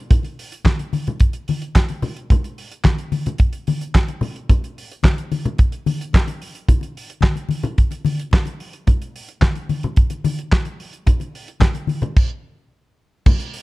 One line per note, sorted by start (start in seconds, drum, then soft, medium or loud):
0.11 kick loud
0.11 closed hi-hat medium
0.11 low conga medium
0.23 closed hi-hat soft
0.23 muted conga soft
0.39 open hi-hat medium
0.52 closed hi-hat medium
0.64 kick loud
0.64 snare loud
0.64 clap medium
0.64 closed hi-hat medium
0.64 muted conga soft
0.64 high conga medium
0.79 closed hi-hat soft
0.79 muted conga soft
0.93 open hi-hat medium
0.93 high conga medium
1.07 closed hi-hat soft
1.07 low conga medium
1.20 kick loud
1.20 closed hi-hat medium
1.20 muted conga soft
1.33 closed hi-hat soft
1.48 open hi-hat medium
1.48 high conga medium
1.62 closed hi-hat soft
1.75 kick loud
1.75 snare loud
1.75 clap medium
1.75 closed hi-hat medium
1.75 muted conga soft
1.89 closed hi-hat soft
1.89 muted conga soft
2.02 open hi-hat medium
2.02 low conga medium
2.17 closed hi-hat soft
2.30 kick loud
2.30 closed hi-hat medium
2.30 low conga medium
2.44 closed hi-hat soft
2.58 open hi-hat medium
2.71 closed hi-hat soft
2.84 kick loud
2.84 snare medium
2.84 clap medium
2.84 closed hi-hat medium
2.84 muted conga soft
2.84 high conga medium
2.98 closed hi-hat soft
3.12 open hi-hat medium
3.12 high conga medium
3.26 closed hi-hat soft
3.26 low conga medium
3.38 kick loud
3.38 closed hi-hat medium
3.53 closed hi-hat soft
3.67 open hi-hat medium
3.67 high conga medium
3.81 closed hi-hat soft
3.94 kick loud
3.94 snare loud
3.94 clap medium
3.94 closed hi-hat medium
4.08 closed hi-hat soft
4.08 muted conga soft
4.21 open hi-hat medium
4.21 low conga medium
4.36 closed hi-hat soft
4.49 kick loud
4.49 closed hi-hat medium
4.49 muted conga soft
4.49 low conga medium
4.64 closed hi-hat soft
4.78 open hi-hat medium
4.92 closed hi-hat medium
5.03 kick loud
5.03 snare loud
5.03 clap medium
5.03 closed hi-hat medium
5.03 muted conga soft
5.03 high conga medium
5.18 closed hi-hat soft
5.18 muted conga soft
5.32 open hi-hat soft
5.32 high conga medium
5.45 closed hi-hat soft
5.45 low conga medium
5.58 kick loud
5.58 closed hi-hat medium
5.58 muted conga soft
5.72 closed hi-hat soft
5.86 open hi-hat medium
5.86 high conga medium
6.01 closed hi-hat soft
6.13 kick loud
6.13 snare medium
6.13 clap medium
6.13 closed hi-hat medium
6.13 muted conga soft
6.28 closed hi-hat soft
6.28 muted conga soft
6.42 open hi-hat medium
6.55 closed hi-hat soft
6.68 kick loud
6.68 closed hi-hat medium
6.68 muted conga soft
6.68 low conga medium
6.81 closed hi-hat soft
6.81 muted conga soft
6.97 open hi-hat medium
7.10 closed hi-hat medium
7.21 kick loud
7.21 snare medium
7.21 clap medium
7.21 closed hi-hat medium
7.21 muted conga soft
7.21 high conga medium
7.36 closed hi-hat soft
7.36 muted conga soft
7.49 open hi-hat medium
7.49 high conga medium
7.63 closed hi-hat soft
7.63 low conga medium
7.78 kick loud
7.78 closed hi-hat medium
7.78 muted conga soft
7.91 closed hi-hat soft
7.91 muted conga soft
8.05 open hi-hat medium
8.05 high conga medium
8.20 closed hi-hat soft
8.31 kick loud
8.31 snare loud
8.31 clap medium
8.31 closed hi-hat medium
8.31 muted conga soft
8.46 closed hi-hat soft
8.46 muted conga soft
8.60 open hi-hat medium
8.73 closed hi-hat soft
8.87 kick loud
8.87 closed hi-hat medium
8.87 low conga medium
9.02 closed hi-hat soft
9.16 open hi-hat medium
9.29 closed hi-hat soft
9.41 kick loud
9.41 snare medium
9.41 clap medium
9.41 closed hi-hat medium
9.41 high conga medium
9.55 closed hi-hat soft
9.55 muted conga soft
9.69 open hi-hat medium
9.69 high conga medium
9.83 closed hi-hat medium
9.83 low conga medium
9.96 kick loud
9.96 closed hi-hat medium
9.96 muted conga soft
10.10 closed hi-hat soft
10.10 muted conga soft
10.24 open hi-hat medium
10.24 high conga medium
10.39 closed hi-hat soft
10.51 kick loud
10.51 snare loud
10.51 clap medium
10.51 closed hi-hat medium
10.51 muted conga soft
10.65 closed hi-hat soft
10.65 muted conga soft
10.80 open hi-hat medium
10.93 closed hi-hat soft
11.06 kick loud
11.06 closed hi-hat medium
11.06 low conga medium
11.20 closed hi-hat soft
11.20 muted conga soft
11.35 open hi-hat medium
11.48 closed hi-hat medium
11.60 kick loud
11.60 snare medium
11.60 clap medium
11.60 closed hi-hat medium
11.60 muted conga soft
11.60 high conga medium
11.74 closed hi-hat soft
11.74 muted conga soft
11.87 open hi-hat medium
11.87 high conga medium
12.02 closed hi-hat soft
12.02 low conga medium
12.16 kick loud
12.16 crash loud
13.26 kick loud
13.26 crash loud
13.26 muted conga soft
13.26 low conga medium
13.40 closed hi-hat soft
13.54 open hi-hat medium